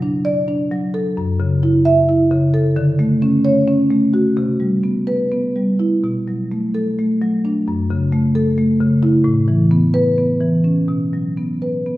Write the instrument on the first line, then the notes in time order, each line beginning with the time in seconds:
marimba
Already playing: B2 F#3
0.02 D4
0.25 D5
0.48 D4
0.71 F#3
0.94 A4
1.17 F#2
1.40 C#3
1.63 E4
1.85 E5
2.09 E4
2.31 C#3
2.54 A4
2.76 D3
2.99 A3
3.22 C#4
3.45 C#5
3.68 C#4
3.91 A3
4.14 F#4
4.37 C3
4.60 G3
4.84 B3
5.07 B4
5.32 B3
5.56 G3
5.79 E4
6.04 B2
6.28 F#3
6.52 A3
6.74 A4
6.99 A3
7.22 F#3
7.45 D4
7.68 F#2
7.90 C#3
8.12 A3
8.35 A4
8.58 A3
8.80 C#3
9.03 E4
9.24 A2
9.48 E3
9.71 B3
9.94 B4
10.18 B3
10.41 E3
10.64 C#4
10.88 B2
11.13 F#3
11.37 B3
11.62 B4
11.86 B3